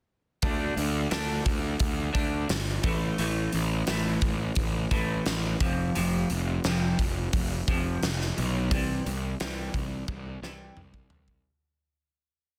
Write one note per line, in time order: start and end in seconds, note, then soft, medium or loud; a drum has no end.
0.42 0.71 D2 medium
0.42 0.76 D3 medium
0.42 0.76 A3 medium
0.42 0.76 D4 medium
0.42 kick loud
0.42 open hi-hat medium
0.77 1.05 D2 medium
0.77 1.08 D3 medium
0.77 1.09 A3 medium
0.77 open hi-hat soft
1.10 1.40 D2 medium
1.10 1.44 D3 medium
1.10 1.44 A3 medium
1.10 1.44 D4 medium
1.10 snare medium
1.10 open hi-hat medium
1.45 1.74 D2 medium
1.45 1.77 D3 medium
1.45 1.77 A3 medium
1.45 kick medium
1.45 open hi-hat soft
1.79 2.08 D2 medium
1.79 2.11 D3 medium
1.79 2.11 A3 medium
1.79 kick loud
1.79 open hi-hat medium
2.13 2.43 D2 medium
2.13 2.47 D3 medium
2.13 2.47 A3 medium
2.13 2.47 D4 medium
2.13 kick medium
2.13 open hi-hat soft
2.48 2.77 G1 medium
2.48 2.80 D3 medium
2.48 2.80 A3 medium
2.48 snare loud
2.48 open hi-hat medium
2.83 3.12 A1 medium
2.83 3.16 A2 medium
2.83 3.17 E3 medium
2.83 3.17 A3 medium
2.83 kick medium
2.83 open hi-hat soft
3.18 3.47 A1 medium
3.18 3.51 A2 medium
3.18 3.52 E3 medium
3.18 3.52 A3 medium
3.18 open hi-hat medium
3.52 3.82 A1 medium
3.52 3.84 A2 medium
3.52 3.85 E3 medium
3.52 open hi-hat soft
3.87 4.16 A1 medium
3.87 4.20 A2 medium
3.87 4.20 E3 medium
3.87 4.20 A3 medium
3.87 snare loud
3.87 open hi-hat medium
4.21 4.50 A1 medium
4.21 4.54 A2 medium
4.21 4.54 E3 medium
4.21 kick medium
4.21 open hi-hat soft
4.55 4.85 A1 medium
4.55 4.89 A2 medium
4.55 4.89 E3 medium
4.55 kick loud
4.55 open hi-hat medium
4.91 5.19 A1 medium
4.91 5.24 A2 medium
4.91 5.24 E3 medium
4.91 5.24 A3 medium
4.91 kick medium
4.91 open hi-hat soft
5.26 5.54 A1 medium
5.26 5.57 A2 medium
5.26 5.57 E3 medium
5.26 snare medium
5.26 open hi-hat soft
5.60 5.88 F1 medium
5.60 5.93 F2 medium
5.60 5.93 C3 medium
5.60 5.94 F3 loud
5.60 kick medium
5.60 open hi-hat soft
5.95 6.24 F1 medium
5.95 6.28 F2 medium
5.95 6.28 C3 medium
5.95 6.28 F3 medium
5.95 open hi-hat medium
6.30 6.58 F1 medium
6.30 6.61 F2 medium
6.30 6.61 C3 medium
6.30 open hi-hat soft
6.64 6.93 F1 medium
6.64 6.98 F2 medium
6.64 6.98 C3 medium
6.64 6.98 F3 medium
6.64 snare medium
6.64 open hi-hat medium
6.99 7.27 F1 medium
6.99 7.30 F2 medium
6.99 7.30 C3 medium
6.99 kick medium
6.99 open hi-hat soft
7.33 7.61 F1 medium
7.33 7.64 F2 medium
7.33 7.65 C3 medium
7.33 kick loud
7.33 open hi-hat medium
7.68 7.96 F1 medium
7.68 8.01 F2 medium
7.68 8.01 C3 medium
7.68 8.01 F3 medium
7.68 kick medium
7.68 open hi-hat soft
8.03 8.30 F1 medium
8.03 8.34 F2 medium
8.03 8.34 C3 medium
8.03 snare medium
8.03 open hi-hat medium
8.21 snare soft
8.37 8.71 B1 medium
8.37 8.68 F2 medium
8.37 8.68 C3 medium
8.37 open hi-hat soft
8.71 8.99 C2 medium
8.71 9.04 C3 medium
8.71 9.04 E3 medium
8.71 9.04 G3 medium
8.71 kick loud
8.71 open hi-hat medium
9.06 9.34 C2 medium
9.06 9.37 C3 medium
9.06 9.37 E3 medium
9.06 open hi-hat soft
9.40 9.68 C2 medium
9.40 9.72 C3 medium
9.40 9.73 E3 medium
9.40 9.73 G3 medium
9.40 snare medium
9.40 open hi-hat medium
9.74 10.02 C2 medium
9.74 10.05 C3 medium
9.74 10.06 E3 medium
9.74 kick medium
9.74 open hi-hat soft
10.08 10.36 C2 medium
10.08 10.40 C3 medium
10.08 10.40 E3 medium
10.08 kick loud
10.42 10.70 C2 medium
10.42 10.75 C3 medium
10.42 10.75 E3 medium
10.42 10.76 G3 medium
10.42 snare medium
10.77 11.05 C2 medium
10.77 11.08 C3 medium
10.77 11.08 E3 medium
10.77 mid tom medium
10.94 kick medium
11.10 11.39 C2 medium
11.10 11.43 C3 medium
11.10 11.43 E3 medium
11.10 floor tom medium
11.28 kick medium